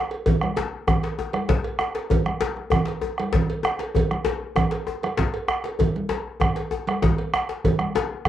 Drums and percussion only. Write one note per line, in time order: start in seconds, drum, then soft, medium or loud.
0.11 cowbell soft
0.26 bombo rim soft
0.26 bombo low medium
0.26 cowbell medium
0.26 djembe bass medium
0.26 low conga medium
0.41 bombo rim medium
0.41 high conga medium
0.56 cowbell soft
0.56 djembe slap medium
0.56 djembe tone medium
0.56 high conga soft
0.87 bombo rim medium
0.87 bombo low medium
0.87 cowbell soft
0.87 djembe slap soft
0.87 djembe bass medium
0.87 low conga medium
1.03 cowbell soft
1.03 djembe slap medium
1.18 djembe tone medium
1.33 bombo rim medium
1.33 cowbell soft
1.33 djembe slap soft
1.33 high conga medium
1.49 bombo low medium
1.49 djembe slap medium
1.49 djembe bass medium
1.49 low conga medium
1.64 bombo rim soft
1.64 cowbell soft
1.79 bombo rim medium
1.79 djembe tone medium
1.95 cowbell soft
1.95 djembe slap medium
2.10 bombo rim soft
2.10 bombo low medium
2.10 cowbell medium
2.10 high conga soft
2.10 djembe bass medium
2.10 low conga medium
2.26 bombo rim medium
2.26 high conga medium
2.40 cowbell soft
2.40 djembe slap medium
2.40 djembe tone medium
2.40 high conga soft
2.56 bombo rim soft
2.56 djembe slap soft
2.56 high conga soft
2.70 bombo rim medium
2.70 bombo low medium
2.70 cowbell soft
2.70 djembe bass medium
2.70 low conga medium
2.85 bombo rim soft
2.85 cowbell soft
2.85 djembe slap medium
3.01 djembe tone medium
3.01 high conga soft
3.18 bombo rim medium
3.18 cowbell medium
3.18 high conga soft
3.33 bombo low medium
3.33 djembe slap medium
3.33 high conga soft
3.33 djembe bass medium
3.33 low conga medium
3.48 cowbell medium
3.48 djembe slap soft
3.48 high conga soft
3.63 bombo rim medium
3.63 djembe tone medium
3.79 cowbell medium
3.79 djembe slap medium
3.95 bombo rim soft
3.95 bombo low medium
3.95 cowbell medium
3.95 djembe bass medium
3.95 low conga medium
4.11 bombo rim medium
4.11 high conga soft
4.25 cowbell medium
4.25 djembe slap medium
4.25 djembe tone medium
4.25 high conga soft
4.56 bombo rim medium
4.56 bombo low medium
4.56 cowbell soft
4.56 djembe slap soft
4.56 djembe bass medium
4.56 low conga medium
4.71 cowbell medium
4.71 djembe slap medium
4.87 djembe tone medium
5.03 bombo rim medium
5.03 cowbell medium
5.03 djembe slap soft
5.03 high conga soft
5.17 bombo low medium
5.17 djembe slap medium
5.17 djembe bass medium
5.17 low conga medium
5.34 bombo rim soft
5.34 cowbell soft
5.48 bombo rim medium
5.48 djembe tone medium
5.64 cowbell soft
5.64 djembe slap medium
5.79 bombo rim soft
5.79 bombo low medium
5.79 cowbell medium
5.79 djembe bass medium
5.79 low conga medium
5.96 high conga medium
6.09 cowbell soft
6.09 djembe slap medium
6.09 djembe tone medium
6.09 high conga soft
6.40 bombo rim medium
6.40 bombo low medium
6.40 cowbell soft
6.40 djembe slap soft
6.40 djembe bass medium
6.40 low conga medium
6.56 cowbell soft
6.56 djembe slap medium
6.71 djembe tone medium
6.87 bombo rim medium
6.87 cowbell soft
6.87 djembe slap soft
6.87 high conga medium
7.02 bombo low medium
7.02 djembe slap medium
7.02 djembe bass medium
7.02 low conga medium
7.18 bombo rim soft
7.18 cowbell soft
7.34 bombo rim loud
7.34 djembe tone medium
7.49 djembe slap medium
7.64 bombo rim soft
7.64 bombo low medium
7.64 cowbell medium
7.64 djembe bass medium
7.64 low conga medium
7.79 bombo rim medium
7.79 high conga medium
7.95 cowbell soft
7.95 djembe slap medium
7.95 high conga soft
7.95 djembe tone medium
8.25 bombo rim medium
8.25 bombo low medium